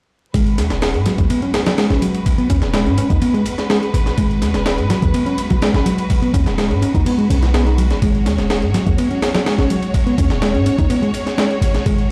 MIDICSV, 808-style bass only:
0, 0, Header, 1, 2, 480
1, 0, Start_track
1, 0, Key_signature, 5, "minor"
1, 0, Tempo, 480000
1, 343, Time_signature, 4, 2, 24, 8
1, 12114, End_track
2, 0, Start_track
2, 0, Title_t, "808-style bass"
2, 0, Program_c, 0, 38
2, 344, Note_on_c, 0, 32, 92
2, 583, Note_on_c, 0, 39, 76
2, 598, Note_off_c, 0, 32, 0
2, 705, Note_on_c, 0, 27, 78
2, 720, Note_off_c, 0, 39, 0
2, 940, Note_on_c, 0, 44, 75
2, 956, Note_off_c, 0, 27, 0
2, 1104, Note_off_c, 0, 44, 0
2, 1183, Note_on_c, 0, 39, 84
2, 1264, Note_off_c, 0, 39, 0
2, 1902, Note_on_c, 0, 32, 81
2, 1983, Note_off_c, 0, 32, 0
2, 2498, Note_on_c, 0, 39, 81
2, 2623, Note_on_c, 0, 27, 82
2, 2638, Note_off_c, 0, 39, 0
2, 2864, Note_on_c, 0, 44, 73
2, 2880, Note_off_c, 0, 27, 0
2, 3026, Note_off_c, 0, 44, 0
2, 3102, Note_on_c, 0, 39, 82
2, 3183, Note_off_c, 0, 39, 0
2, 3938, Note_on_c, 0, 32, 85
2, 4105, Note_off_c, 0, 32, 0
2, 4178, Note_on_c, 0, 32, 95
2, 4422, Note_on_c, 0, 39, 80
2, 4437, Note_off_c, 0, 32, 0
2, 4543, Note_on_c, 0, 27, 81
2, 4558, Note_off_c, 0, 39, 0
2, 4782, Note_on_c, 0, 44, 75
2, 4797, Note_off_c, 0, 27, 0
2, 4945, Note_off_c, 0, 44, 0
2, 5025, Note_on_c, 0, 39, 81
2, 5105, Note_off_c, 0, 39, 0
2, 5739, Note_on_c, 0, 32, 82
2, 5822, Note_off_c, 0, 32, 0
2, 6340, Note_on_c, 0, 39, 84
2, 6466, Note_on_c, 0, 27, 79
2, 6481, Note_off_c, 0, 39, 0
2, 6705, Note_on_c, 0, 44, 74
2, 6720, Note_off_c, 0, 27, 0
2, 6866, Note_off_c, 0, 44, 0
2, 6945, Note_on_c, 0, 39, 82
2, 7025, Note_off_c, 0, 39, 0
2, 7299, Note_on_c, 0, 35, 80
2, 7902, Note_on_c, 0, 32, 93
2, 7917, Note_off_c, 0, 35, 0
2, 7983, Note_off_c, 0, 32, 0
2, 8021, Note_on_c, 0, 32, 93
2, 8258, Note_on_c, 0, 39, 85
2, 8274, Note_off_c, 0, 32, 0
2, 8382, Note_on_c, 0, 27, 81
2, 8397, Note_off_c, 0, 39, 0
2, 8619, Note_on_c, 0, 44, 77
2, 8634, Note_off_c, 0, 27, 0
2, 8784, Note_off_c, 0, 44, 0
2, 8866, Note_on_c, 0, 39, 82
2, 8945, Note_off_c, 0, 39, 0
2, 9584, Note_on_c, 0, 32, 83
2, 9664, Note_off_c, 0, 32, 0
2, 10181, Note_on_c, 0, 39, 82
2, 10303, Note_on_c, 0, 27, 81
2, 10318, Note_off_c, 0, 39, 0
2, 10543, Note_on_c, 0, 44, 76
2, 10558, Note_off_c, 0, 27, 0
2, 10706, Note_off_c, 0, 44, 0
2, 10784, Note_on_c, 0, 39, 86
2, 10864, Note_off_c, 0, 39, 0
2, 11615, Note_on_c, 0, 32, 85
2, 11784, Note_off_c, 0, 32, 0
2, 11860, Note_on_c, 0, 32, 97
2, 12113, Note_off_c, 0, 32, 0
2, 12114, End_track
0, 0, End_of_file